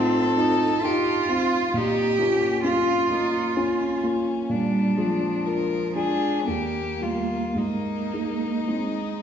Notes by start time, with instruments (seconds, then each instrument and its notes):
Already playing: grand piano A2 C4 D#4 F4, cello C4, violin A4
0.37 grand piano C4 F4, cello D#4
0.82 grand piano D#4 F4, cello F4, violin G4
1.29 grand piano C4 F4, violin F4
1.74 grand piano A#2, violin D#4, cello G4
2.19 grand piano A#3 F4, violin C#4
2.64 grand piano C#4 F4, cello F4, violin F4
3.11 grand piano A#3 F4, violin D#4
3.57 grand piano C#4 F4, violin C#4
4.03 grand piano A#3 F4
4.49 grand piano A#2, cello G3, violin D4
4.96 cello F3, grand piano G#3 F4
5.46 grand piano D4 F4, violin A#4
5.95 grand piano G#3 F4, cello D4, violin G#4
6.46 grand piano D#2, cello A#3, violin G4
7.01 grand piano G3 F4, violin F4
7.54 grand piano G#2, cello A#3, violin D#4
8.13 grand piano G#3 D#4
8.67 cello G#3, grand piano C4 D#4